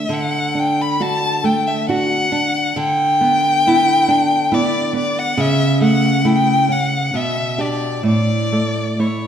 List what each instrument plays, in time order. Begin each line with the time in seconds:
Already playing: nylon-string guitar D4, violin E5
0.09 nylon-string guitar D3
0.13 violin F#5
0.55 nylon-string guitar D4
0.59 violin G5
0.81 violin B5
1.00 nylon-string guitar D4 F#4, violin A5
1.44 nylon-string guitar A3, violin G5
1.67 violin E5
1.88 nylon-string guitar D4 F#4, violin F#5
2.32 nylon-string guitar D4
2.76 nylon-string guitar D3, violin G5
3.21 nylon-string guitar B3
3.67 nylon-string guitar B3 E4
4.08 nylon-string guitar D4
4.52 nylon-string guitar B3 E4, violin D5
4.93 nylon-string guitar B3, violin D5
5.19 violin F#5
5.37 nylon-string guitar C#3, violin E5
5.81 nylon-string guitar A3, violin F#5
6.25 nylon-string guitar A3 E4, violin G5
6.69 nylon-string guitar C#4, violin F#5
7.14 nylon-string guitar B2, violin E5
7.58 nylon-string guitar D4 G4, violin D5
8.03 nylon-string guitar A2, violin D5
8.52 nylon-string guitar A3
8.99 nylon-string guitar A3 E4, violin C#5